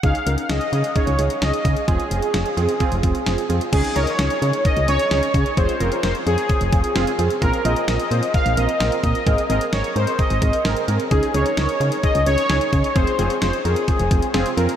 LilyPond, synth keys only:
\new Staff \with { instrumentName = "Synth keys" } { \time 4/4 \key des \major \tempo 4 = 130 <des' ees' aes'>8 <des' ees' bes'>8 <des' ees' aes'>8 <des' ees' aes'>8 <des' ees' aes'>8 <des' ees' aes'>8 <des' ees' aes'>8 <des' ees' aes'>8 | <c' f' aes'>8 <c' f' aes'>8 <c' f' aes'>8 <c' f' aes'>8 <c' f' aes'>8 <c' f' aes'>8 <c' f' aes'>8 <c' f' aes'>8 | <des' ees' aes'>8 <des' ees' bes'>8 <des' ees' aes'>8 <des' ees' aes'>8 <des' ees' bes'>8 <des' ees' aes'>8 <des' ees' aes'>8 <des' ees' aes'>8 | <c' f' aes'>8 <c' f' bes'>8 <c' f' bes'>8 <c' f' aes'>8 <c' f' aes'>8 <c' f' aes'>8 <c' f' aes'>8 <c' f' aes'>8 |
<c' f' bes'>8 <c' f' bes'>8 <c' f' bes'>8 <c' f' c''>8 <c' f' bes'>8 <c' f' bes'>8 <c' f' bes'>8 <c' f' bes'>8 | <c' aes' bes'>8 <c' aes' bes'>8 <c' aes' bes'>8 <c' aes' bes'>8 <c' aes' bes'>8 <c' aes' bes'>8 <c' aes' bes'>8 <c' aes' bes'>8 | <des' ees' aes'>8 <des' ees' aes'>8 <des' ees' bes'>8 <des' ees' aes'>8 <des' ees' aes'>8 <des' ees' aes'>8 <des' ees' aes'>8 <des' ees' aes'>8 | <c' f' aes'>8 <c' f' aes'>8 <c' f' aes'>8 <c' f' bes'>8 <c' f' aes'>8 <c' f' aes'>8 <c' f' aes'>8 <c' f' bes'>8 | }